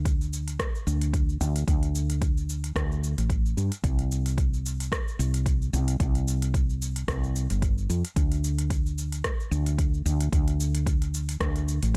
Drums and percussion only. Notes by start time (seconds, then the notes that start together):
0.05 kick, closed hi-hat, cabasa
0.21 cabasa
0.33 cabasa
0.48 closed hi-hat, cabasa
0.59 kick, cross-stick, closed hi-hat, cabasa
0.75 cabasa
0.87 cabasa
1.02 closed hi-hat, cabasa
1.14 kick, closed hi-hat, cabasa
1.29 cabasa
1.41 cabasa
1.56 closed hi-hat, cabasa
1.68 kick, closed hi-hat, cabasa
1.83 closed hi-hat, cabasa
1.95 cabasa
2.10 closed hi-hat, cabasa
2.22 kick, closed hi-hat, cabasa
2.37 cabasa
2.49 cabasa
2.64 closed hi-hat, cabasa
2.76 kick, cross-stick, closed hi-hat, cabasa
2.92 cabasa
3.04 cabasa
3.18 closed hi-hat, cabasa
3.30 kick, closed hi-hat, cabasa
3.46 cabasa
3.58 cabasa
3.72 closed hi-hat, cabasa
3.84 kick, closed hi-hat, cabasa
3.99 closed hi-hat, cabasa
4.12 cabasa
4.26 closed hi-hat, cabasa
4.38 kick, closed hi-hat, cabasa
4.54 cabasa
4.66 cabasa
4.80 closed hi-hat, cabasa
4.92 kick, cross-stick, closed hi-hat, cabasa
5.08 cabasa
5.20 cabasa
5.34 closed hi-hat, cabasa
5.46 kick, closed hi-hat, cabasa
5.62 cabasa
5.74 cabasa
5.88 closed hi-hat, cabasa
6.00 kick, closed hi-hat, cabasa
6.15 closed hi-hat, cabasa
6.28 cabasa
6.42 closed hi-hat, cabasa
6.54 kick, closed hi-hat, cabasa
6.70 cabasa
6.82 cabasa
6.96 closed hi-hat, cabasa
7.08 kick, cross-stick, closed hi-hat, cabasa
7.24 cabasa
7.36 cabasa
7.50 closed hi-hat, cabasa
7.62 kick, closed hi-hat, cabasa
7.78 cabasa
7.90 cabasa
8.05 closed hi-hat, cabasa
8.16 kick, closed hi-hat, cabasa
8.32 closed hi-hat, cabasa
8.44 cabasa
8.58 closed hi-hat, cabasa
8.70 kick, closed hi-hat, cabasa
8.86 cabasa
8.98 cabasa
9.12 closed hi-hat, cabasa
9.24 kick, cross-stick, closed hi-hat, cabasa
9.40 cabasa
9.52 cabasa
9.66 closed hi-hat, cabasa
9.78 kick, closed hi-hat, cabasa
9.94 cabasa
10.06 cabasa
10.21 closed hi-hat, cabasa
10.32 kick, closed hi-hat, cabasa
10.48 closed hi-hat, cabasa
10.60 cabasa
10.75 closed hi-hat, cabasa
10.86 kick, closed hi-hat, cabasa
11.02 closed hi-hat, cabasa
11.14 cabasa
11.29 closed hi-hat, cabasa
11.40 kick, cross-stick, closed hi-hat, cabasa
11.56 closed hi-hat, cabasa
11.68 cabasa
11.83 closed hi-hat, cabasa